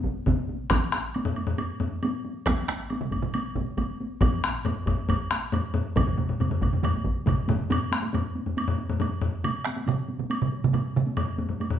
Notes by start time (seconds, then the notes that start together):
0.04 taiko, taiko high
0.17 taiko high
0.26 taiko, taiko low-mid, taiko mid, taiko high
0.39 taiko high
0.49 taiko high
0.60 taiko high
0.70 taiko rim, taiko, taiko high, high woodblock
0.83 taiko high
0.92 taiko rim, taiko high
1.05 taiko high
1.14 taiko high, high woodblock
1.25 taiko low-mid, taiko high
1.36 taiko high, high woodblock
1.47 taiko low-mid
1.58 taiko high, high woodblock
1.80 taiko low-mid, taiko high
1.92 taiko high
2.03 taiko high, high woodblock
2.14 taiko high
2.25 taiko high
2.35 taiko high
2.46 taiko rim, taiko, taiko high, high woodblock
2.58 taiko high
2.68 taiko rim, taiko high
2.80 taiko high
2.90 taiko high, high woodblock
3.01 taiko mid
3.12 taiko, taiko high, high woodblock
3.22 taiko mid, taiko high
3.34 taiko high, high woodblock
3.55 taiko, taiko mid, taiko high
3.68 taiko high
3.78 taiko, taiko high, high woodblock
3.90 taiko high
4.00 taiko high
4.12 taiko high
4.21 taiko, taiko low-mid, taiko high, high woodblock
4.33 taiko high
4.44 taiko rim, taiko high
4.55 taiko high
4.65 taiko low-mid, taiko high, high woodblock
4.77 taiko high
4.86 taiko, taiko low-mid, taiko high, high woodblock
5.08 taiko, taiko low-mid, taiko high, high woodblock
5.31 taiko rim, taiko high
5.42 taiko high
5.52 taiko low-mid, taiko high, high woodblock
5.74 taiko low-mid, taiko high
5.86 taiko high
5.96 taiko, taiko low-mid, taiko mid, taiko high, high woodblock
6.07 taiko low-mid, taiko mid
6.18 taiko low-mid, taiko mid, taiko high
6.29 taiko low-mid, taiko mid
6.40 taiko low-mid, taiko mid, taiko high, high woodblock
6.51 taiko low-mid, taiko mid
6.61 taiko, taiko low-mid, taiko mid, taiko high, high woodblock
6.73 taiko low-mid, taiko mid
6.83 taiko low-mid, taiko mid, taiko high, high woodblock
6.94 taiko high
7.04 taiko, taiko high
7.16 taiko high
7.26 taiko, taiko low-mid, taiko mid, taiko high, high woodblock
7.37 taiko high
7.48 taiko low-mid, taiko mid, taiko high
7.70 taiko low-mid, taiko high, high woodblock
7.91 taiko rim, taiko high
8.02 taiko high
8.13 taiko low-mid, taiko high, high woodblock
8.35 taiko high
8.46 taiko low-mid, taiko high
8.57 taiko high, high woodblock
8.68 taiko low-mid
8.78 taiko high
8.90 taiko low-mid, taiko high
9.00 taiko low-mid, taiko high, high woodblock
9.21 taiko low-mid
9.44 taiko mid, taiko high, high woodblock
9.65 taiko rim, taiko high
9.77 taiko high
9.87 taiko mid, taiko high, high woodblock
10.09 taiko high
10.20 taiko mid, taiko high
10.30 taiko high, high woodblock
10.42 taiko mid
10.52 taiko high
10.64 taiko mid, taiko high
10.74 taiko mid, taiko high, high woodblock
10.96 taiko mid
11.07 taiko high
11.17 taiko low-mid, taiko high, high woodblock
11.39 taiko low-mid, taiko high
11.49 taiko low-mid, taiko high
11.60 taiko high, high woodblock
11.70 taiko low-mid